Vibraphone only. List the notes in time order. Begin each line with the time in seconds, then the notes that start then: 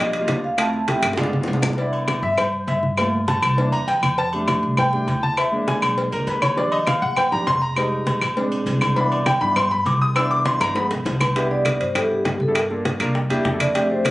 Already playing: D#5
0.44 F5
0.60 A5
0.89 G5
11.22 B4
11.36 B4
11.51 D5
11.80 C5
11.97 A4
12.11 G4
12.42 A4
12.57 A#4
13.61 D5
13.91 C5
14.06 B4